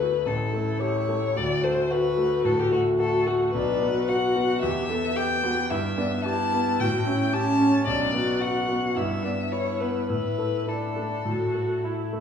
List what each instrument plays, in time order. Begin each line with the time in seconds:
Already playing: grand piano D2 A4, violin B4
0.00 grand piano A3
0.26 grand piano A1, viola E4, violin A4
0.54 grand piano A3
0.81 grand piano G4, violin C#5
1.09 grand piano A3
1.36 grand piano D2, viola F#4, violin D5
1.63 grand piano A3, violin C5
1.90 grand piano F#4, violin B4
2.18 grand piano A3
2.44 grand piano A2, violin A4
2.60 violin G4
2.72 grand piano A3, violin F#4
2.99 grand piano F#4, violin A4
3.26 grand piano A3, violin F#4
3.53 grand piano B1, viola D4, violin B4
3.81 grand piano B3, viola F#4
4.08 grand piano F#4, violin F#5
4.35 grand piano B3
4.62 grand piano E2, viola G4, violin E5
4.89 grand piano B3, viola A4
5.16 viola G4, grand piano G4, violin G5
5.43 grand piano B3, viola F#4
5.69 grand piano G2, viola E4, violin E5
5.97 grand piano B3, viola D4
6.24 viola E4, grand piano G4, violin A5
6.53 grand piano B3
6.79 grand piano A2, viola F#4, violin G5
7.05 grand piano C#4, viola E4
7.33 viola C#4, grand piano G4, violin A5
7.60 grand piano C#4
7.87 grand piano B1, viola D4, violin D5
8.13 grand piano B3, viola F#4
8.40 grand piano F#4, violin F#5
8.69 grand piano B3
8.96 grand piano G2, viola E4, violin E5
9.24 grand piano B3, viola D4
9.52 viola E4, grand piano E4, violin C#5
9.80 grand piano B3, violin B4
10.09 grand piano A2, viola E4, violin B4
10.39 grand piano A3
10.67 viola D4, grand piano E4, violin A4
10.97 grand piano A3
11.25 grand piano A2, viola F#4
11.54 grand piano A3
11.84 grand piano E4, viola E4
12.13 grand piano A3